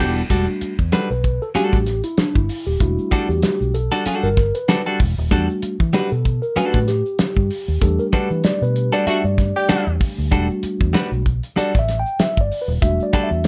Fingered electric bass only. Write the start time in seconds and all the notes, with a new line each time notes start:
0.00 E1
0.30 E1
0.62 muted fingered electric bass stroke
0.79 E2
0.93 muted fingered electric bass stroke
1.10 B1
1.55 muted fingered electric bass stroke
1.73 A1
2.18 muted fingered electric bass stroke
2.36 G1
2.67 D#1
2.80 E1
3.12 muted fingered electric bass stroke
3.29 E2
3.43 muted fingered electric bass stroke
3.61 B1
4.06 muted fingered electric bass stroke
4.23 G1
5.00 E1
5.18 D#1
5.31 E2
5.63 muted fingered electric bass stroke
5.80 E3
5.94 muted fingered electric bass stroke
6.12 B2
6.57 muted fingered electric bass stroke
6.74 A2
7.20 muted fingered electric bass stroke
7.37 G2
7.68 D#2
7.81 E2
8.13 muted fingered electric bass stroke
8.31 E3
8.45 muted fingered electric bass stroke
8.62 B2
9.07 muted fingered electric bass stroke
9.24 G2
9.70 muted fingered electric bass stroke
9.87 E2
10.18 D2
10.32 E1
10.63 muted fingered electric bass stroke
10.81 E2
10.94 muted fingered electric bass stroke
11.12 B1
11.57 muted fingered electric bass stroke
11.75 A1
12.19 muted fingered electric bass stroke
12.37 G1
12.68 D#1
12.82 E1
13.14 muted fingered electric bass stroke
13.31 E2
13.44 muted fingered electric bass stroke